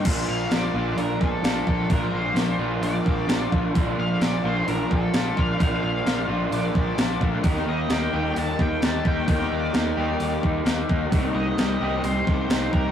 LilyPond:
<<
  \new Staff \with { instrumentName = "Lead electric guitar" } { \time 4/4 \key bes \major \tempo 4 = 130 r8 f''8 d''4 bes'8 a'4 a'8 | bes'8 c''4 r8 d''4. r8 | r8 f''8 d''8 c''8 bes'8 a'4 f''8 | f''8 f''4 r8 d''4. r8 |
r8 ees''8 g''8 g''8 a''8 g''8 a''8 g''8 | g''8 d''2 r4. | r8 ees''4. c''4. bes'8 | }
  \new Staff \with { instrumentName = "Overdriven electric guitar" } { \time 4/4 \key bes \major <bes, f bes d' f'>4 <f bes d' f'>8 <bes d' f'>4. <f bes d' f'>8 <bes d' f'>8 | <bes, f bes d' f'>4 <f bes d' f'>8 <bes d' f'>4. <f bes d' f'>8 <bes d' f'>8 | <bes, f bes d' f'>4 <f bes d' f'>8 <bes d' f'>4. <f bes d' f'>8 <bes d' f'>8 | <bes, f bes d' f'>4 <f bes d' f'>8 <bes d' f'>4. <f bes d' f'>8 <bes d' f'>8 |
<ees bes ees' g'>4 <ees bes ees' g'>8 <bes ees' g'>4. <ees bes ees' g'>8 <bes ees' g'>8 | <ees bes ees' g'>4 <ees bes ees' g'>8 <bes ees' g'>4. <ees bes ees' g'>8 <bes ees' g'>8 | <c ees g ees' g'>4 <ees g ees' g'>8 <g ees' g'>4. <ees g ees' g'>8 <g ees' g'>8 | }
  \new Staff \with { instrumentName = "Clean electric guitar" } { \time 4/4 \key bes \major f4. f'8 d'8 f8 d'4 | f4. f'8 d'8 f8 d'4 | f4. f'8 d'8 f8 d'4 | f4. f'8 d'8 f8 d'8 a8 |
ees8 bes8 bes8 g'4 ees4 bes8 | ees8 bes8 bes8 g'4 ees4 bes8 | ees8 bes8 bes8 g'8 c'8 ees8 c'8 bes8 | }
  \new Staff \with { instrumentName = "Overdriven electric guitar" } { \clef bass \time 4/4 \key bes \major <bes, d f bes d'>4. <bes, d f bes d'>2~ <bes, d f bes d'>8 | <bes, d f bes d'>4. <bes, d f bes d'>2~ <bes, d f bes d'>8 | <bes, d f bes d'>4. <bes, d f bes d'>2~ <bes, d f bes d'>8 | <bes, d f bes d'>4. <bes, d f bes d'>2~ <bes, d f bes d'>8 |
<ees g bes ees'>4. <ees g bes ees'>2~ <ees g bes ees'>8 | <ees g bes ees'>4. <ees g bes ees'>2~ <ees g bes ees'>8 | <c g c' ees'>4. <c g c' ees'>2~ <c g c' ees'>8 | }
  \new Staff \with { instrumentName = "Picked electric bass" } { \clef bass \time 4/4 \key bes \major bes,,8 bes,,8 bes,,8 bes,,8 bes,,8 bes,,8 bes,,8 bes,,8 | bes,,8 bes,,8 bes,,8 bes,,8 bes,,8 bes,,8 bes,,8 bes,,8 | bes,,8 bes,,8 bes,,8 bes,,8 bes,,8 bes,,8 bes,,8 bes,,8 | bes,,8 bes,,8 bes,,8 bes,,8 bes,,8 bes,,8 bes,,8 bes,,8 |
ees,8 ees,8 ees,8 ees,8 ees,8 ees,8 ees,8 ees,8 | ees,8 ees,8 ees,8 ees,8 ees,8 ees,8 ees,8 ees,8 | c,8 c,8 c,8 c,8 c,8 c,8 c,8 c,8 | }
  \new DrumStaff \with { instrumentName = "Drums" } \drummode { \time 4/4 <cymc hho bd>4 <hho sn>4 hho8 <bd sn>8 <hho sn>8 bd8 | <hho bd>4 <hho sn>4 hho8 bd8 <hho sn>8 bd8 | <hho bd>4 <hho sn>4 hho8 bd8 <hho sn>8 bd8 | <hho bd>4 <hho sn>4 hho8 bd8 <hho sn>8 bd8 |
<hho bd>16 sn8. <hho sn>4 hho8 <bd sn>8 <hho sn>8 bd8 | <hho bd>16 sn8. <hho sn>4 hho8 bd8 <hho sn>8 bd8 | <hho bd>4 <hho sn>4 hho8 <bd sn>8 <hho sn>8 bd8 | }
>>